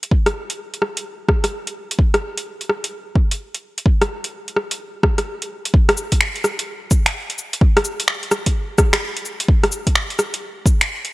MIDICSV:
0, 0, Header, 1, 2, 480
1, 0, Start_track
1, 0, Tempo, 468750
1, 114, Time_signature, 4, 2, 24, 8
1, 11399, End_track
2, 0, Start_track
2, 0, Title_t, "Drums"
2, 30, Note_on_c, 9, 42, 49
2, 117, Note_on_c, 9, 36, 104
2, 133, Note_off_c, 9, 42, 0
2, 219, Note_off_c, 9, 36, 0
2, 269, Note_on_c, 9, 37, 60
2, 269, Note_on_c, 9, 42, 29
2, 372, Note_off_c, 9, 37, 0
2, 372, Note_off_c, 9, 42, 0
2, 511, Note_on_c, 9, 42, 49
2, 613, Note_off_c, 9, 42, 0
2, 754, Note_on_c, 9, 42, 29
2, 837, Note_on_c, 9, 37, 47
2, 857, Note_off_c, 9, 42, 0
2, 940, Note_off_c, 9, 37, 0
2, 993, Note_on_c, 9, 42, 51
2, 1095, Note_off_c, 9, 42, 0
2, 1316, Note_on_c, 9, 36, 93
2, 1317, Note_on_c, 9, 37, 57
2, 1418, Note_off_c, 9, 36, 0
2, 1420, Note_off_c, 9, 37, 0
2, 1473, Note_on_c, 9, 37, 45
2, 1473, Note_on_c, 9, 42, 51
2, 1575, Note_off_c, 9, 37, 0
2, 1575, Note_off_c, 9, 42, 0
2, 1712, Note_on_c, 9, 42, 44
2, 1814, Note_off_c, 9, 42, 0
2, 1957, Note_on_c, 9, 42, 50
2, 2034, Note_on_c, 9, 36, 113
2, 2059, Note_off_c, 9, 42, 0
2, 2136, Note_off_c, 9, 36, 0
2, 2192, Note_on_c, 9, 37, 58
2, 2192, Note_on_c, 9, 42, 28
2, 2294, Note_off_c, 9, 37, 0
2, 2294, Note_off_c, 9, 42, 0
2, 2432, Note_on_c, 9, 42, 50
2, 2534, Note_off_c, 9, 42, 0
2, 2672, Note_on_c, 9, 42, 28
2, 2759, Note_on_c, 9, 37, 45
2, 2774, Note_off_c, 9, 42, 0
2, 2861, Note_off_c, 9, 37, 0
2, 2909, Note_on_c, 9, 42, 51
2, 3011, Note_off_c, 9, 42, 0
2, 3230, Note_on_c, 9, 36, 96
2, 3333, Note_off_c, 9, 36, 0
2, 3393, Note_on_c, 9, 42, 51
2, 3496, Note_off_c, 9, 42, 0
2, 3630, Note_on_c, 9, 42, 43
2, 3732, Note_off_c, 9, 42, 0
2, 3869, Note_on_c, 9, 42, 48
2, 3949, Note_on_c, 9, 36, 111
2, 3971, Note_off_c, 9, 42, 0
2, 4052, Note_off_c, 9, 36, 0
2, 4112, Note_on_c, 9, 37, 56
2, 4112, Note_on_c, 9, 42, 28
2, 4214, Note_off_c, 9, 37, 0
2, 4214, Note_off_c, 9, 42, 0
2, 4344, Note_on_c, 9, 42, 50
2, 4446, Note_off_c, 9, 42, 0
2, 4587, Note_on_c, 9, 42, 27
2, 4674, Note_on_c, 9, 37, 44
2, 4689, Note_off_c, 9, 42, 0
2, 4776, Note_off_c, 9, 37, 0
2, 4825, Note_on_c, 9, 42, 50
2, 4927, Note_off_c, 9, 42, 0
2, 5153, Note_on_c, 9, 36, 97
2, 5155, Note_on_c, 9, 37, 58
2, 5256, Note_off_c, 9, 36, 0
2, 5257, Note_off_c, 9, 37, 0
2, 5306, Note_on_c, 9, 37, 46
2, 5306, Note_on_c, 9, 42, 50
2, 5408, Note_off_c, 9, 37, 0
2, 5408, Note_off_c, 9, 42, 0
2, 5549, Note_on_c, 9, 42, 43
2, 5652, Note_off_c, 9, 42, 0
2, 5789, Note_on_c, 9, 42, 49
2, 5875, Note_on_c, 9, 36, 119
2, 5892, Note_off_c, 9, 42, 0
2, 5978, Note_off_c, 9, 36, 0
2, 6030, Note_on_c, 9, 37, 71
2, 6030, Note_on_c, 9, 42, 33
2, 6116, Note_on_c, 9, 69, 70
2, 6132, Note_off_c, 9, 37, 0
2, 6132, Note_off_c, 9, 42, 0
2, 6219, Note_off_c, 9, 69, 0
2, 6266, Note_on_c, 9, 42, 57
2, 6269, Note_on_c, 9, 36, 59
2, 6355, Note_on_c, 9, 26, 111
2, 6368, Note_off_c, 9, 42, 0
2, 6371, Note_off_c, 9, 36, 0
2, 6457, Note_off_c, 9, 26, 0
2, 6508, Note_on_c, 9, 42, 33
2, 6597, Note_on_c, 9, 37, 55
2, 6597, Note_on_c, 9, 69, 63
2, 6611, Note_off_c, 9, 42, 0
2, 6699, Note_off_c, 9, 37, 0
2, 6699, Note_off_c, 9, 69, 0
2, 6749, Note_on_c, 9, 42, 61
2, 6851, Note_off_c, 9, 42, 0
2, 7073, Note_on_c, 9, 69, 73
2, 7075, Note_on_c, 9, 36, 102
2, 7176, Note_off_c, 9, 69, 0
2, 7178, Note_off_c, 9, 36, 0
2, 7230, Note_on_c, 9, 26, 104
2, 7230, Note_on_c, 9, 42, 59
2, 7333, Note_off_c, 9, 26, 0
2, 7333, Note_off_c, 9, 42, 0
2, 7473, Note_on_c, 9, 42, 47
2, 7561, Note_on_c, 9, 69, 65
2, 7576, Note_off_c, 9, 42, 0
2, 7663, Note_off_c, 9, 69, 0
2, 7713, Note_on_c, 9, 42, 56
2, 7795, Note_on_c, 9, 36, 123
2, 7816, Note_off_c, 9, 42, 0
2, 7898, Note_off_c, 9, 36, 0
2, 7954, Note_on_c, 9, 37, 65
2, 7954, Note_on_c, 9, 42, 33
2, 8035, Note_on_c, 9, 69, 68
2, 8056, Note_off_c, 9, 37, 0
2, 8056, Note_off_c, 9, 42, 0
2, 8138, Note_off_c, 9, 69, 0
2, 8189, Note_on_c, 9, 42, 57
2, 8272, Note_on_c, 9, 26, 112
2, 8292, Note_off_c, 9, 42, 0
2, 8374, Note_off_c, 9, 26, 0
2, 8427, Note_on_c, 9, 42, 33
2, 8514, Note_on_c, 9, 37, 55
2, 8514, Note_on_c, 9, 69, 60
2, 8530, Note_off_c, 9, 42, 0
2, 8616, Note_off_c, 9, 37, 0
2, 8616, Note_off_c, 9, 69, 0
2, 8666, Note_on_c, 9, 42, 61
2, 8668, Note_on_c, 9, 36, 64
2, 8769, Note_off_c, 9, 42, 0
2, 8770, Note_off_c, 9, 36, 0
2, 8994, Note_on_c, 9, 36, 106
2, 8994, Note_on_c, 9, 37, 64
2, 8994, Note_on_c, 9, 69, 72
2, 9096, Note_off_c, 9, 36, 0
2, 9097, Note_off_c, 9, 37, 0
2, 9097, Note_off_c, 9, 69, 0
2, 9145, Note_on_c, 9, 26, 110
2, 9145, Note_on_c, 9, 37, 52
2, 9145, Note_on_c, 9, 42, 57
2, 9247, Note_off_c, 9, 26, 0
2, 9247, Note_off_c, 9, 37, 0
2, 9247, Note_off_c, 9, 42, 0
2, 9386, Note_on_c, 9, 42, 47
2, 9476, Note_on_c, 9, 69, 63
2, 9488, Note_off_c, 9, 42, 0
2, 9579, Note_off_c, 9, 69, 0
2, 9626, Note_on_c, 9, 42, 59
2, 9712, Note_on_c, 9, 36, 124
2, 9729, Note_off_c, 9, 42, 0
2, 9815, Note_off_c, 9, 36, 0
2, 9866, Note_on_c, 9, 37, 62
2, 9866, Note_on_c, 9, 42, 32
2, 9952, Note_on_c, 9, 69, 69
2, 9969, Note_off_c, 9, 37, 0
2, 9969, Note_off_c, 9, 42, 0
2, 10054, Note_off_c, 9, 69, 0
2, 10104, Note_on_c, 9, 36, 65
2, 10105, Note_on_c, 9, 42, 56
2, 10194, Note_on_c, 9, 26, 114
2, 10206, Note_off_c, 9, 36, 0
2, 10207, Note_off_c, 9, 42, 0
2, 10296, Note_off_c, 9, 26, 0
2, 10346, Note_on_c, 9, 42, 32
2, 10433, Note_on_c, 9, 37, 50
2, 10433, Note_on_c, 9, 69, 60
2, 10448, Note_off_c, 9, 42, 0
2, 10535, Note_off_c, 9, 37, 0
2, 10535, Note_off_c, 9, 69, 0
2, 10586, Note_on_c, 9, 42, 60
2, 10689, Note_off_c, 9, 42, 0
2, 10912, Note_on_c, 9, 36, 108
2, 10919, Note_on_c, 9, 69, 68
2, 11014, Note_off_c, 9, 36, 0
2, 11022, Note_off_c, 9, 69, 0
2, 11071, Note_on_c, 9, 26, 108
2, 11071, Note_on_c, 9, 42, 57
2, 11173, Note_off_c, 9, 26, 0
2, 11173, Note_off_c, 9, 42, 0
2, 11312, Note_on_c, 9, 42, 47
2, 11399, Note_off_c, 9, 42, 0
2, 11399, End_track
0, 0, End_of_file